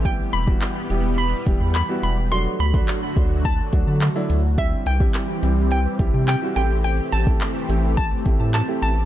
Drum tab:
HH |x-x-x-x-x-x-x-x-|x-x-x-x-x-x-x-x-|x-x-x-x-x-x-x-x-|x-x-x-x-x-x-x-x-|
CP |----x-------x---|----x-------x---|----x-------x---|----x-------x---|
BD |o--o------o-----|---o--o-o-o-----|o--o------o-----|---o----o-o-----|